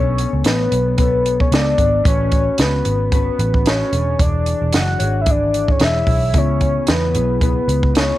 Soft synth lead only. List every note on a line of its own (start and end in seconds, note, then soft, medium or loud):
0.00 0.42 C#5 loud
0.46 0.95 B4 medium
0.99 1.37 B4 medium
1.41 1.46 C#5 medium
1.53 2.02 D5 loud
2.08 2.56 C#5 loud
2.61 3.10 B4 medium
3.13 3.70 B4 loud
3.68 4.23 C#5 loud
4.21 4.75 D5 loud
4.74 5.23 F#5 loud
5.21 5.32 E5 medium
5.31 5.73 D5 loud
5.71 5.82 C#5 medium
5.84 6.39 E5 loud
6.38 6.92 C#5 loud
6.90 7.42 B4 loud
7.42 7.92 B4 medium
7.97 8.18 C#5 loud